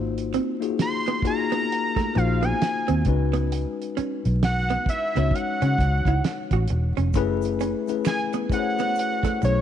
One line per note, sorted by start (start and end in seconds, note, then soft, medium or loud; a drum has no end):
0.00 0.36 G#1 medium
0.00 0.44 A#3 medium
0.00 0.45 D#4 medium
0.00 0.45 F4 medium
0.00 0.45 F#4 medium
0.00 0.46 C5 medium
0.18 closed hi-hat soft
0.34 0.54 C4 medium
0.34 closed hi-hat medium
0.61 1.18 A#3 medium
0.61 1.18 D#4 medium
0.61 1.18 F4 medium
0.61 1.18 F#4 medium
0.61 1.19 G#4 medium
0.61 closed hi-hat soft
0.79 1.22 C6 loud
0.79 snare medium
0.79 closed hi-hat medium
1.06 1.20 B3 medium
1.06 closed hi-hat soft
1.22 2.07 A#3 medium
1.22 2.07 D#4 medium
1.22 2.07 F4 medium
1.22 2.07 F#4 medium
1.22 2.08 G#4 medium
1.22 muted hollow-body jazz guitar stroke soft
1.22 kick medium
1.22 closed hi-hat medium
1.27 2.18 A#5 loud
1.52 1.65 B3 medium
1.52 closed hi-hat soft
1.72 closed hi-hat medium
1.96 2.10 A3 medium
1.96 kick medium
1.96 snare soft
1.96 closed hi-hat soft
2.15 2.52 A#1 medium
2.15 3.06 A#3 medium
2.15 3.06 D#4 medium
2.15 3.06 F4 medium
2.15 3.07 F#4 medium
2.15 3.07 C5 medium
2.15 2.46 F5 medium
2.15 muted hollow-body jazz guitar stroke soft
2.15 closed hi-hat soft
2.43 2.56 B3 medium
2.43 3.06 G#5 medium
2.43 closed hi-hat soft
2.62 snare loud
2.62 closed hi-hat medium
2.88 3.03 D#2 medium
2.88 3.01 C4 medium
2.88 closed hi-hat soft
3.05 3.64 C#2 loud
3.05 4.72 G#3 medium
3.05 4.72 C#4 medium
3.05 4.72 D#4 medium
3.05 4.72 F#4 medium
3.05 4.72 B4 medium
3.05 muted hollow-body jazz guitar stroke soft
3.05 kick medium
3.05 closed hi-hat medium
3.33 3.46 B3 medium
3.33 closed hi-hat soft
3.52 closed hi-hat medium
3.82 closed hi-hat soft
3.97 4.17 C#4 medium
3.97 muted fingered electric bass stroke soft
3.97 closed hi-hat medium
4.25 4.75 B1 medium
4.25 closed hi-hat soft
4.43 4.85 F#5 loud
4.43 snare medium
4.43 closed hi-hat medium
4.70 4.83 B3 medium
4.70 closed hi-hat soft
4.86 5.36 E5 loud
4.86 muted fingered electric bass stroke soft
4.86 muted hollow-body jazz guitar stroke soft
4.86 kick medium
4.86 closed hi-hat medium
5.15 5.30 C#2 medium
5.15 6.72 G#3 medium
5.15 5.29 B3 medium
5.15 6.72 C#4 medium
5.15 6.72 D#4 medium
5.15 6.73 F#4 medium
5.15 6.73 C#5 medium
5.15 snare soft
5.15 closed hi-hat soft
5.31 6.70 F#5 loud
5.31 kick medium
5.35 closed hi-hat medium
5.62 5.76 C#3 medium
5.62 5.74 C#4 medium
5.62 closed hi-hat soft
5.78 6.01 C#2 medium
5.78 muted hollow-body jazz guitar stroke soft
5.78 kick medium
5.78 closed hi-hat soft
6.05 6.20 C#2 medium
6.05 6.20 E4 medium
6.05 kick medium
6.05 closed hi-hat soft
6.24 snare medium
6.24 closed hi-hat medium
6.51 6.66 A1 medium
6.51 6.65 F#4 medium
6.51 kick medium
6.51 closed hi-hat soft
6.68 6.92 E1 medium
6.68 muted hollow-body jazz guitar stroke soft
6.68 closed hi-hat medium
6.97 7.15 F1 medium
6.97 7.10 C#4 medium
6.97 closed hi-hat soft
7.13 7.73 F#1 medium
7.13 7.79 A3 medium
7.13 7.79 C#4 medium
7.13 7.79 E4 medium
7.13 7.79 G#4 medium
7.13 7.80 B4 loud
7.13 kick loud
7.13 closed hi-hat medium
7.13 shaker medium
7.42 closed hi-hat soft
7.42 shaker medium
7.60 7.81 C#4 medium
7.60 closed hi-hat soft
7.60 shaker soft
7.88 8.45 A3 medium
7.88 8.45 C#4 medium
7.88 8.45 E4 medium
7.88 8.46 G#4 medium
7.88 8.46 B4 medium
7.88 closed hi-hat soft
7.88 shaker soft
8.05 8.21 G#5 loud
8.05 finger snap medium
8.05 snare medium
8.05 closed hi-hat medium
8.05 shaker medium
8.33 8.47 B3 medium
8.33 closed hi-hat soft
8.33 shaker soft
8.50 9.34 A3 medium
8.50 9.34 C#4 medium
8.50 9.34 E4 medium
8.50 9.34 G#4 medium
8.50 8.60 C5 medium
8.50 9.39 F#5 loud
8.50 muted hollow-body jazz guitar stroke soft
8.50 kick medium
8.50 closed hi-hat medium
8.50 shaker soft
8.59 9.38 C#5 medium
8.78 8.92 B3 medium
8.78 closed hi-hat soft
8.78 shaker soft
8.95 closed hi-hat medium
8.95 shaker medium
9.23 9.37 A3 medium
9.23 kick medium
9.23 snare soft
9.23 closed hi-hat soft
9.23 shaker soft
9.42 9.61 B1 medium
9.42 9.61 A3 medium
9.42 9.61 C#4 medium
9.42 9.61 E4 medium
9.42 9.61 G#4 medium
9.42 9.51 C5 medium
9.42 9.61 C#5 medium
9.42 muted hollow-body jazz guitar stroke soft
9.42 closed hi-hat soft
9.42 shaker soft
9.51 9.61 C#5 medium